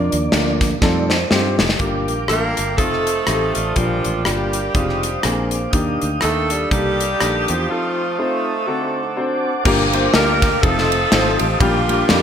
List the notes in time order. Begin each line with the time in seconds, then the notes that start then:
Already playing: F3 A#3 D4 F4 A#4 D5
0.12 D#2, closed hi-hat
0.32 D2 A#3 D4 F4 A#4, snare, closed hi-hat
0.61 kick, snare, closed hi-hat
0.79 F2 G3 A3 C4 D#4 F4 D5, kick, snare
0.83 A4
1.09 C5, snare
1.30 G2 C4 D#4 F4 G4 C5, snare
1.59 F#1, snare
1.69 snare
1.79 G1 G2 A#3 D4 F4 G4 A#4 F5 G5 D6, kick, closed hi-hat
2.08 A#1, closed hi-hat
2.28 A1 A#3 D4 F4 A4 A#4, cross-stick, closed hi-hat
2.57 G1, cross-stick, closed hi-hat
2.77 F1 A3 C4 D#4 F4 A4 C5 A5 D#6, kick, closed hi-hat
2.93 cross-stick
3.07 closed hi-hat
3.27 A1 A3 C4 D#4 G4, cross-stick, closed hi-hat
3.54 A1 D4 F4, closed hi-hat
3.76 A#1 A#2 F3 G3 A#3 D4 F4 A#4 G5 D6, kick, closed hi-hat
4.04 A1, closed hi-hat
4.25 G1 G3 A#3 D4 F4 G4, cross-stick, closed hi-hat
4.53 closed hi-hat
4.75 F1 G#3 C4 D#4 F4 C5 D#6, kick, closed hi-hat
4.89 cross-stick
5.03 closed hi-hat
5.22 A#1 A#2 A#3 C4 D4 G#4 F5 D6, cross-stick, closed hi-hat
5.51 closed hi-hat
5.71 D#2 D#3 A#3 D4 D#4 G4 G5 D#6, kick, closed hi-hat
6.02 D2, closed hi-hat
6.21 D#2 A3 A#3 D4 D#4 A4, cross-stick, closed hi-hat
6.50 G3, closed hi-hat
6.71 C2 A#3 D4 D#4 G4 A4, kick, closed hi-hat
7.00 closed hi-hat
7.21 A#1 A#3 D4 D#4 A4, cross-stick, closed hi-hat
7.48 E2 F3, closed hi-hat
7.69 A3 C4 D#4 F4 A4 C5 F5 A5 D#6
8.19 A3 C4 D#4 F4 A4 C5
8.66 D3 C4 D4 F#4 A4 F#5 D6
9.17 C4 D4 F#4 C5
9.64 G1 G2 A#3 D4 F4 G4 A#4 F5 G5 D6, kick, crash
9.93 A#3 D4 F4 G4 C5, ride
10.14 D2 A#3 D4 F4 G4 A#4, snare, ride
10.42 kick, snare, ride
10.62 F1 A3 C4 D#4 F4 A4 C5 F5 A5 D#6, kick, ride
10.78 snare
10.92 ride
11.11 G#1 A3 C4 D#4 F4 C5, snare, ride
11.39 A1 G4, ride
11.60 A#1 A#2 G3 A#3 D4 F4 G4 A#4 G5 D6, kick, ride
11.88 G3 A#3 D4 F4 G4, ride
12.09 F2 G3 A#3 D4 F4 G4 A#4, snare, ride